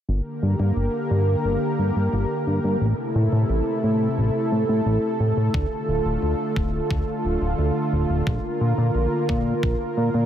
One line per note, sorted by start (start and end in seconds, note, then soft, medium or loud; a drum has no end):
0.09 0.21 G1 medium
0.09 2.79 D3 medium
0.09 2.79 A#3 medium
0.09 2.79 G4 medium
0.09 2.79 A#4 medium
0.43 0.55 G2 medium
0.60 0.72 G2 medium
0.77 0.89 G1 medium
1.11 1.36 G2 loud
1.45 1.57 G1 medium
1.79 1.92 G2 medium
1.96 2.09 G2 medium
2.13 2.26 G1 medium
2.47 2.60 G2 medium
2.64 2.77 G2 medium
2.81 2.94 A1 medium
2.81 5.51 C3 medium
2.81 8.23 A3 medium
2.81 5.52 E4 medium
2.81 8.23 A4 medium
3.15 3.28 A2 loud
3.32 3.45 A2 medium
3.50 3.62 A1 medium
3.84 4.08 A2 loud
4.18 4.30 A1 medium
4.52 4.64 A2 medium
4.69 4.81 A2 medium
4.86 4.98 A1 medium
5.20 5.32 A2 medium
5.37 5.50 A2 medium
5.54 5.67 D2 loud
5.54 10.26 D3 medium
5.54 10.26 F4 medium
5.54 kick loud
5.88 6.01 D1 medium
6.05 6.18 D1 loud
6.22 6.35 D2 medium
6.56 6.81 D1 loud
6.56 kick loud
6.91 7.03 D2 medium
6.91 kick loud
7.25 7.37 D1 medium
7.42 7.54 D1 medium
7.59 7.71 D2 medium
7.93 8.05 D1 medium
8.10 8.22 D1 medium
8.27 8.39 A#1 loud
8.27 10.26 A#3 medium
8.27 10.26 A#4 medium
8.27 kick loud
8.61 8.73 A#2 loud
8.78 8.90 A#2 medium
8.95 9.07 A#1 medium
9.29 9.54 A#2 loud
9.29 kick loud
9.63 9.76 A#1 medium
9.63 kick loud
9.97 10.10 A#2 medium
10.14 10.26 A#2 medium